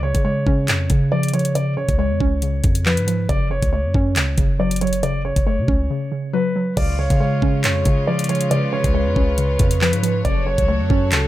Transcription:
0.00 0.13 C#2 loud
0.00 0.67 C#3 medium
0.00 0.21 C#5 medium
0.15 0.45 C#3 loud
0.15 kick medium
0.15 closed hi-hat medium
0.25 1.33 G#3 medium
0.25 1.08 C#5 medium
0.47 0.70 C#3 loud
0.47 1.55 C#4 medium
0.47 kick medium
0.68 0.89 F2 loud
0.68 0.89 C#3 medium
0.68 clap loud
0.68 closed hi-hat medium
0.90 1.54 C#3 medium
0.90 1.85 C#3 loud
0.90 kick loud
0.90 closed hi-hat medium
1.12 1.33 F3 medium
1.12 1.29 D5 medium
1.23 closed hi-hat medium
1.28 closed hi-hat medium
1.34 2.42 F3 medium
1.34 1.51 C#5 medium
1.34 closed hi-hat medium
1.39 closed hi-hat soft
1.45 closed hi-hat medium
1.55 1.76 C#3 medium
1.55 1.73 D5 medium
1.55 closed hi-hat medium
1.77 2.41 C#3 medium
1.77 1.95 C#5 medium
1.89 2.12 C#2 loud
1.89 kick medium
1.89 closed hi-hat medium
1.98 3.07 G#3 medium
1.98 2.82 C#5 medium
2.10 2.20 F2 loud
2.20 2.62 C#2 loud
2.20 3.29 C#4 medium
2.20 kick medium
2.42 2.62 C#3 medium
2.42 closed hi-hat medium
2.63 2.99 F2 loud
2.63 3.28 C#3 medium
2.63 kick loud
2.63 closed hi-hat medium
2.75 closed hi-hat medium
2.86 3.06 F3 medium
2.86 3.27 B4 medium
2.86 clap loud
2.97 3.28 G#2 loud
2.97 closed hi-hat medium
3.07 3.29 F3 medium
3.07 closed hi-hat medium
3.29 3.61 F#1 loud
3.29 3.49 C#3 medium
3.29 3.47 D5 loud
3.29 kick loud
3.29 closed hi-hat medium
3.50 4.15 C#3 medium
3.50 3.69 C#5 medium
3.62 3.86 C#2 loud
3.62 kick medium
3.62 closed hi-hat medium
3.73 4.81 A3 medium
3.73 4.56 C#5 medium
3.84 3.94 F#2 loud
3.94 4.18 F#2 loud
3.94 5.03 C#4 loud
3.94 kick medium
4.16 4.37 C#2 loud
4.16 4.36 C#3 medium
4.16 clap loud
4.16 closed hi-hat medium
4.37 5.32 F#1 loud
4.37 5.02 C#3 medium
4.37 kick loud
4.37 closed hi-hat medium
4.59 4.81 F#3 loud
4.59 4.77 D5 medium
4.71 closed hi-hat medium
4.76 closed hi-hat medium
4.81 5.90 F#3 medium
4.81 4.99 C#5 medium
4.81 closed hi-hat medium
4.87 closed hi-hat soft
4.93 closed hi-hat medium
5.03 5.24 C#3 medium
5.03 5.21 D5 loud
5.03 closed hi-hat medium
5.25 5.89 C#3 medium
5.25 5.42 C#5 medium
5.36 5.60 F#1 loud
5.36 kick medium
5.36 closed hi-hat medium
5.47 6.55 A3 medium
5.47 6.30 C#5 medium
5.58 5.68 C#3 loud
5.68 5.89 C#2 loud
5.68 6.77 C#4 loud
5.68 kick medium
5.90 6.10 C#3 medium
6.12 6.76 C#3 medium
6.33 6.55 F#3 loud
6.33 6.74 B4 medium
6.56 6.77 F#3 medium
6.77 7.09 C#2 loud
6.77 10.21 C#3 medium
6.77 6.98 C#3 medium
6.77 10.21 G#3 medium
6.77 10.21 F4 medium
6.77 11.28 C#5 medium
6.77 6.95 D5 loud
6.77 7.60 F5 loud
6.77 kick loud
6.77 closed hi-hat medium
6.77 crash loud
6.99 7.63 C#3 medium
6.99 7.16 C#5 medium
7.10 7.41 C#3 loud
7.10 kick medium
7.10 closed hi-hat medium
7.20 8.29 G#3 medium
7.20 8.03 C#5 medium
7.42 7.65 C#3 loud
7.42 8.51 C#4 medium
7.42 kick medium
7.64 7.85 F2 loud
7.64 7.84 C#3 medium
7.64 8.05 C#5 loud
7.64 clap loud
7.64 closed hi-hat medium
7.85 8.50 C#3 medium
7.85 8.80 C#3 loud
7.85 kick loud
7.85 closed hi-hat medium
8.07 8.28 F3 medium
8.07 8.25 D5 medium
8.19 closed hi-hat medium
8.24 closed hi-hat medium
8.29 9.38 F3 medium
8.29 8.47 C#5 medium
8.29 closed hi-hat medium
8.35 closed hi-hat soft
8.41 closed hi-hat medium
8.51 8.72 C#3 loud
8.51 10.21 B4 loud
8.51 8.69 D5 loud
8.51 closed hi-hat medium
8.73 9.37 C#3 medium
8.73 8.90 C#5 medium
8.84 9.08 C#2 loud
8.84 kick medium
8.84 closed hi-hat medium
8.94 10.03 G#3 medium
8.94 9.77 C#5 medium
9.06 9.16 F2 loud
9.16 9.58 C#2 loud
9.16 10.25 C#4 medium
9.16 kick medium
9.38 9.58 C#3 medium
9.38 closed hi-hat medium
9.59 9.94 F2 loud
9.59 10.23 C#3 medium
9.59 kick loud
9.59 closed hi-hat medium
9.71 closed hi-hat medium
9.81 10.01 F3 medium
9.81 10.22 B4 medium
9.81 clap loud
9.93 10.23 G#2 loud
9.93 closed hi-hat medium
10.03 10.25 F3 medium
10.03 closed hi-hat medium
10.25 10.57 F#1 loud
10.25 10.45 C#3 loud
10.25 11.28 F#3 medium
10.25 11.28 F#4 medium
10.25 11.28 A4 medium
10.25 11.08 C#5 loud
10.25 10.42 D5 loud
10.25 kick loud
10.25 closed hi-hat medium
10.46 11.10 C#3 medium
10.46 10.64 C#5 medium
10.58 10.81 C#2 loud
10.58 kick medium
10.58 closed hi-hat medium
10.68 11.28 A3 medium
10.68 11.28 C#5 medium
10.80 10.90 F#2 loud
10.90 11.13 F#2 loud
10.90 11.28 C#4 loud
10.90 kick medium
11.12 11.28 C#2 loud
11.12 11.28 C#3 medium
11.12 11.28 A4 medium
11.12 clap loud
11.12 closed hi-hat medium

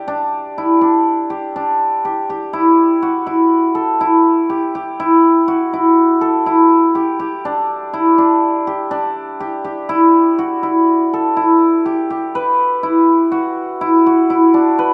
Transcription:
0.00 0.57 E4 medium
0.00 1.30 G4 medium
0.08 0.81 D4 medium
0.58 2.53 E4 medium
0.81 1.55 D4 medium
1.30 2.04 G4 medium
1.56 5.29 D4 medium
2.05 2.29 G4 medium
2.30 3.08 G4 medium
2.53 3.26 E4 medium
3.02 4.56 F#4 medium
3.27 4.00 E4 medium
3.75 6.21 A4 medium
4.01 4.99 E4 medium
4.50 4.75 G4 medium
4.75 5.54 G4 medium
5.00 5.73 E4 medium
5.48 7.01 F#4 medium
5.73 6.46 E4 medium
6.21 9.14 A4 medium
6.46 7.93 E4 medium
6.95 7.19 G4 medium
7.20 8.67 G4 medium
7.45 8.18 D4 medium
7.93 9.89 E4 medium
8.18 8.90 D4 medium
8.67 9.40 G4 medium
8.91 12.64 D4 medium
9.40 9.64 G4 medium
9.64 10.45 G4 medium
9.89 10.63 E4 medium
10.39 11.92 F#4 medium
10.63 11.36 E4 medium
11.13 14.06 A4 medium
11.37 12.83 E4 medium
11.86 12.10 G4 medium
12.10 13.38 G4 medium
12.35 14.78 B4 medium
12.83 13.81 E4 medium
13.32 14.06 F#4 medium
13.81 14.30 E4 medium
14.06 14.94 F#4 medium
14.30 14.94 E4 medium
14.54 14.94 D4 medium
14.79 14.94 B4 medium

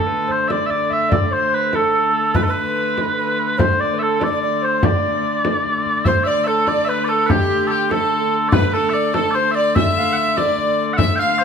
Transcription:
0.00 1.11 D3 medium
0.00 1.11 A3 medium
0.00 0.31 A4 medium
0.07 0.29 B4 medium
0.07 frame drum soft
0.28 0.50 C5 medium
0.28 0.48 C5 medium
0.28 frame drum soft
0.48 0.92 D5 medium
0.48 0.66 D5 medium
0.48 0.51 E5 medium
0.48 frame drum medium
0.66 0.70 E5 medium
0.70 0.93 D5 medium
0.70 frame drum soft
0.90 1.11 E5 medium
0.90 1.13 E5 medium
0.90 frame drum soft
1.09 6.06 D3 medium
1.09 6.06 A3 medium
1.09 1.25 D5 medium
1.09 1.33 D5 medium
1.09 frame drum medium
1.25 1.32 D5 medium
1.31 1.76 C5 medium
1.31 1.54 C5 medium
1.31 frame drum soft
1.54 1.75 B4 medium
1.73 2.11 A4 medium
1.73 2.35 A4 medium
1.73 frame drum medium
2.34 2.46 B4 medium
2.34 2.43 B4 medium
2.34 frame drum medium
2.43 2.50 A4 medium
2.47 3.13 B4 medium
2.47 3.59 B4 medium
2.56 frame drum soft
2.98 frame drum medium
3.18 3.37 B4 medium
3.57 3.81 C5 medium
3.57 frame drum medium
3.79 3.95 D5 medium
3.79 3.99 D5 medium
3.79 frame drum soft
3.94 4.01 B4 soft
3.99 4.22 A4 medium
3.99 4.23 A4 medium
3.99 4.03 E5 medium
4.20 4.25 D5 medium
4.20 4.65 D5 medium
4.20 frame drum medium
4.25 4.31 D5 medium
4.32 4.41 D5 medium
4.42 4.64 D5 medium
4.62 4.85 C5 medium
4.83 5.65 D5 medium
4.83 6.05 D5 medium
4.83 frame drum medium
5.45 frame drum medium
5.66 frame drum soft
5.86 frame drum soft
6.05 10.97 D3 medium
6.05 10.98 A3 medium
6.05 6.15 C5 medium
6.05 6.28 C5 medium
6.05 6.24 C5 medium
6.05 6.08 E5 medium
6.05 frame drum medium
6.24 6.45 D5 medium
6.24 6.49 D5 medium
6.24 6.28 E5 medium
6.24 frame drum soft
6.28 6.44 D5 medium
6.44 6.68 A4 medium
6.44 6.69 A4 medium
6.44 6.68 A4 medium
6.44 6.47 E5 medium
6.66 6.88 D5 medium
6.66 6.90 D5 medium
6.66 6.85 D5 medium
6.66 frame drum medium
6.85 7.09 B4 medium
6.85 7.11 B4 medium
6.85 6.89 E5 medium
6.89 7.04 B4 medium
7.04 7.28 A4 medium
7.04 7.09 D5 medium
7.09 7.26 A4 medium
7.09 7.33 A4 medium
7.26 7.67 G4 medium
7.26 7.30 B4 medium
7.26 frame drum medium
7.31 7.92 G4 medium
7.67 7.89 G4 medium
7.67 7.92 G4 medium
7.67 7.71 A4 medium
7.90 8.33 A4 medium
7.90 8.16 A4 medium
7.90 8.48 A4 medium
7.90 frame drum medium
8.17 8.36 A4 medium
8.48 8.71 B4 medium
8.48 8.75 B4 medium
8.48 8.53 D5 medium
8.52 8.73 B4 medium
8.52 frame drum medium
8.73 8.95 A4 medium
8.73 8.89 A4 medium
8.73 9.14 A4 medium
8.73 frame drum soft
8.89 9.14 D5 medium
8.89 8.93 E5 medium
8.94 9.13 D5 medium
9.14 9.37 A4 medium
9.14 9.31 A4 medium
9.14 9.36 A4 medium
9.14 frame drum medium
9.31 9.51 C5 medium
9.31 9.34 D5 medium
9.35 9.54 C5 medium
9.35 9.55 C5 medium
9.51 9.75 D5 medium
9.51 9.77 D5 medium
9.51 9.55 E5 medium
9.55 9.74 D5 medium
9.75 10.13 E5 medium
9.75 9.96 E5 medium
9.75 10.39 E5 medium
9.75 frame drum medium
9.97 10.18 F5 medium
9.97 frame drum soft
10.13 10.37 E5 medium
10.13 10.16 F#5 medium
10.17 10.39 E5 medium
10.17 frame drum soft
10.37 10.93 D5 medium
10.37 10.83 D5 medium
10.37 frame drum medium
10.58 frame drum soft
10.93 11.16 E5 loud
10.93 10.97 F#5 loud
10.97 11.44 D3 medium
10.97 11.44 A3 medium
10.97 11.17 E5 loud
10.97 11.21 E5 medium
10.97 frame drum medium
11.16 11.38 F5 loud
11.16 11.41 F5 medium
11.16 11.44 F5 medium
11.16 11.19 G5 loud
11.16 frame drum soft
11.38 11.44 C5 medium

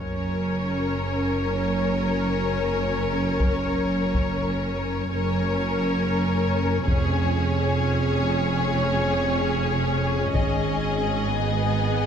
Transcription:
0.00 5.10 F#1 soft
0.00 5.10 F#2 soft
0.00 5.11 C#4 soft
0.00 5.11 A#4 soft
0.00 5.10 C#5 soft
3.40 taiko soft
4.14 taiko soft
5.12 6.85 F#1 soft
5.12 6.84 F#2 soft
5.12 6.85 C#4 soft
5.12 6.85 A#4 soft
5.12 6.85 C#5 soft
6.87 10.32 F1 soft
6.87 10.31 F2 medium
6.87 11.30 C#4 soft
6.87 10.32 G#4 medium
6.87 10.32 C#5 soft
6.87 taiko soft
10.35 12.06 G#1 soft
10.35 12.06 G#2 soft
10.35 12.06 G#4 soft
10.35 12.06 D#5 soft
10.35 taiko soft
11.34 12.06 B3 soft

